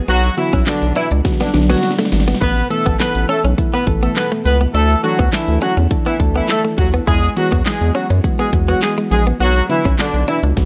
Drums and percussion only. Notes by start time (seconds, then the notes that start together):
0.08 closed hi-hat, shaker
0.24 closed hi-hat, shaker
0.38 closed hi-hat, shaker
0.53 kick, closed hi-hat, shaker
0.67 snare, clap, closed hi-hat, shaker
0.82 closed hi-hat, shaker
0.96 closed hi-hat, shaker
1.11 closed hi-hat, shaker
1.25 kick, snare, closed hi-hat, shaker
1.32 snare
1.40 snare, closed hi-hat, shaker
1.47 snare
1.54 snare, closed hi-hat
1.62 snare
1.70 snare, closed hi-hat, shaker
1.76 snare
1.83 snare, closed hi-hat, shaker
1.91 snare
1.98 snare, closed hi-hat, shaker
2.05 snare
2.12 snare, open hi-hat, shaker
2.20 snare
2.28 snare, closed hi-hat, shaker
2.35 snare
2.42 kick, closed hi-hat, shaker
2.57 closed hi-hat, shaker
2.71 closed hi-hat, shaker
2.86 kick, closed hi-hat, shaker
3.00 snare, clap, closed hi-hat, shaker
3.15 closed hi-hat, shaker
3.29 closed hi-hat, shaker
3.44 closed hi-hat, shaker
3.58 kick, closed hi-hat, shaker
3.74 closed hi-hat, shaker
3.87 kick, closed hi-hat
4.03 closed hi-hat, shaker
4.16 snare, clap, closed hi-hat, shaker
4.32 closed hi-hat, shaker
4.45 open hi-hat, shaker
4.61 closed hi-hat, shaker
4.75 closed hi-hat, shaker
4.90 closed hi-hat, shaker
5.04 closed hi-hat, shaker
5.19 kick, closed hi-hat, shaker
5.33 snare, clap, closed hi-hat, shaker
5.48 closed hi-hat, shaker
5.62 closed hi-hat, shaker
5.77 closed hi-hat, shaker
5.90 kick, closed hi-hat, shaker
6.06 closed hi-hat, shaker
6.20 kick, closed hi-hat
6.35 closed hi-hat, shaker
6.49 snare, clap, closed hi-hat, shaker
6.65 closed hi-hat, shaker
6.78 kick, open hi-hat, shaker
6.94 closed hi-hat, shaker
7.07 kick, closed hi-hat, shaker
7.23 closed hi-hat, shaker
7.37 closed hi-hat, shaker
7.52 kick, closed hi-hat, shaker
7.66 snare, clap, closed hi-hat, shaker
7.81 closed hi-hat, shaker
7.95 closed hi-hat, shaker
8.10 closed hi-hat, shaker
8.23 kick, closed hi-hat, shaker
8.39 closed hi-hat, shaker
8.53 kick, closed hi-hat
8.69 closed hi-hat, shaker
8.82 snare, clap, closed hi-hat, shaker
8.98 closed hi-hat, shaker
9.11 open hi-hat, shaker
9.27 closed hi-hat, shaker
9.41 closed hi-hat, shaker
9.56 closed hi-hat, shaker
9.70 closed hi-hat, shaker
9.85 kick, closed hi-hat, shaker
9.99 snare, clap, closed hi-hat, shaker
10.14 closed hi-hat, shaker
10.28 closed hi-hat, shaker
10.43 closed hi-hat, shaker
10.57 kick, snare, closed hi-hat, shaker